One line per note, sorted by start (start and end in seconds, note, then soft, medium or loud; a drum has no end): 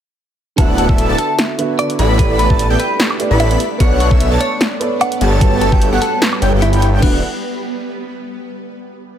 0.56 0.87 D1 medium
0.56 1.55 D3 loud
0.56 1.98 D3 medium
0.56 1.56 B3 medium
0.56 1.98 B3 medium
0.56 0.86 B3 medium
0.56 1.98 E4 medium
0.56 0.86 E4 medium
0.56 1.98 F#4 medium
0.56 1.57 F#4 medium
0.56 0.86 A4 medium
0.56 0.72 A4 loud
0.56 0.86 D5 medium
0.56 0.86 F#5 medium
0.56 kick loud
0.56 closed hi-hat medium
0.60 1.57 E5 loud
0.78 1.05 A4 medium
0.78 closed hi-hat medium
0.89 1.07 D1 loud
0.89 1.07 B3 medium
0.89 1.07 E4 medium
0.89 1.07 A4 medium
0.89 1.07 D5 medium
0.89 1.07 E5 medium
0.89 kick loud
0.98 closed hi-hat medium
1.09 1.15 D1 medium
1.09 1.17 B3 medium
1.09 1.17 E4 medium
1.09 1.17 A4 medium
1.09 1.17 D5 medium
1.09 1.17 A5 loud
1.18 1.39 A4 medium
1.18 closed hi-hat medium
1.39 snare loud
1.39 closed hi-hat medium
1.58 1.97 D3 loud
1.58 1.98 B3 medium
1.58 1.98 F#4 medium
1.58 1.98 E5 loud
1.58 closed hi-hat medium
1.79 2.06 D5 medium
1.79 closed hi-hat medium
1.79 high woodblock medium
1.90 closed hi-hat medium
1.99 2.48 A1 loud
1.99 3.58 G3 medium
1.99 5.18 A3 medium
1.99 2.48 B3 medium
1.99 3.58 D4 medium
1.99 2.48 E4 medium
1.99 2.48 A4 medium
1.99 2.48 D5 medium
1.99 2.48 B5 loud
1.99 closed hi-hat medium
2.17 3.17 A3 loud
2.17 3.17 G4 medium
2.17 2.33 B4 loud
2.17 3.18 B4 medium
2.17 kick loud
2.17 closed hi-hat medium
2.21 3.19 D5 loud
2.39 2.67 B4 loud
2.39 closed hi-hat medium
2.50 2.68 A1 loud
2.50 2.63 B3 loud
2.50 2.63 E4 medium
2.50 2.63 A4 medium
2.50 2.63 D5 medium
2.50 2.63 A5 loud
2.50 kick loud
2.59 closed hi-hat medium
2.70 2.76 A1 medium
2.70 2.78 B3 medium
2.70 2.78 E4 medium
2.70 2.78 A4 medium
2.70 2.78 D5 medium
2.70 2.78 G5 loud
2.80 3.00 B4 loud
2.80 closed hi-hat medium
3.00 snare loud
3.00 closed hi-hat medium
3.11 high woodblock medium
3.19 3.58 A3 loud
3.19 3.59 G4 medium
3.19 3.59 B4 medium
3.19 3.59 D5 loud
3.19 closed hi-hat medium
3.31 3.57 A1 loud
3.31 3.59 B3 loud
3.31 3.59 E4 medium
3.31 3.59 A4 medium
3.31 3.59 D5 medium
3.31 3.59 B5 loud
3.40 3.67 E5 medium
3.40 closed hi-hat medium
3.51 closed hi-hat medium
3.60 6.99 B3 medium
3.60 5.20 D4 medium
3.60 closed hi-hat medium
3.78 4.09 B1 loud
3.78 4.78 B3 loud
3.78 4.09 B3 medium
3.78 4.09 D4 medium
3.78 4.78 A4 medium
3.78 4.09 A4 medium
3.78 3.94 C#5 loud
3.78 4.09 C#5 medium
3.78 4.79 C#5 medium
3.78 4.09 F#5 medium
3.78 kick loud
3.78 closed hi-hat medium
3.82 4.80 D5 loud
4.00 4.28 C#5 loud
4.00 closed hi-hat medium
4.11 4.29 B1 loud
4.11 4.29 B3 medium
4.11 4.29 D4 medium
4.11 4.29 A4 medium
4.11 4.29 C#5 medium
4.11 4.29 E5 medium
4.11 4.29 E5 loud
4.11 kick loud
4.20 closed hi-hat medium
4.31 4.37 B1 loud
4.31 4.39 B3 medium
4.31 4.39 D4 medium
4.31 4.39 A4 medium
4.31 4.39 C#5 medium
4.31 4.39 A5 loud
4.41 4.61 C#5 medium
4.41 closed hi-hat medium
4.61 snare loud
4.61 closed hi-hat medium
4.80 5.20 B3 loud
4.80 5.20 A4 medium
4.80 5.20 C#5 medium
4.80 5.21 D5 loud
4.80 closed hi-hat medium
5.01 5.28 F#5 medium
5.01 closed hi-hat medium
5.01 high woodblock medium
5.12 closed hi-hat medium
5.21 5.70 G1 medium
5.21 7.01 G3 medium
5.21 5.70 B3 medium
5.21 5.70 G4 medium
5.21 5.70 A4 medium
5.21 5.70 C#5 medium
5.21 5.70 A5 loud
5.21 closed hi-hat medium
5.39 6.38 G3 loud
5.39 6.39 F#4 medium
5.39 6.40 A4 medium
5.39 5.55 A4 loud
5.39 6.40 B4 medium
5.39 6.41 C#5 loud
5.39 kick loud
5.39 closed hi-hat medium
5.61 5.89 A4 loud
5.61 closed hi-hat medium
5.72 5.90 G1 loud
5.72 5.85 B3 loud
5.72 5.85 G4 medium
5.72 5.85 A4 medium
5.72 5.85 C#5 medium
5.72 5.85 G5 loud
5.72 kick loud
5.82 closed hi-hat medium
5.92 5.98 G1 loud
5.92 6.00 B3 loud
5.92 6.00 G4 medium
5.92 6.00 A4 medium
5.92 6.00 C#5 medium
5.92 6.00 F#5 loud
6.02 6.22 A4 loud
6.02 closed hi-hat medium
6.22 snare loud
6.22 closed hi-hat medium
6.33 high woodblock medium
6.40 6.51 G1 loud
6.40 6.99 G3 loud
6.40 6.50 B3 medium
6.40 6.50 G4 medium
6.40 6.50 A4 medium
6.40 7.00 A4 medium
6.40 7.01 B4 medium
6.40 6.50 C#5 medium
6.40 6.50 G5 medium
6.40 closed hi-hat medium
6.44 7.01 C#5 loud
6.53 7.01 G1 loud
6.53 7.00 B3 medium
6.53 7.00 G4 medium
6.53 7.00 A4 medium
6.53 7.00 C#5 medium
6.53 7.00 G5 medium
6.53 7.00 G5 loud
6.62 6.89 E4 medium
6.62 closed hi-hat medium
6.73 closed hi-hat medium
6.82 closed hi-hat medium
6.99 7.21 D1 loud
6.99 7.16 D3 medium
6.99 7.17 B3 medium
6.99 7.18 B3 medium
6.99 7.18 D4 loud
6.99 7.18 E4 medium
6.99 7.18 F#4 medium
6.99 7.18 A4 medium
6.99 7.18 D5 medium
6.99 7.18 F#5 medium
6.99 7.18 F#5 loud
6.99 kick loud
6.99 crash medium
7.05 7.19 E5 loud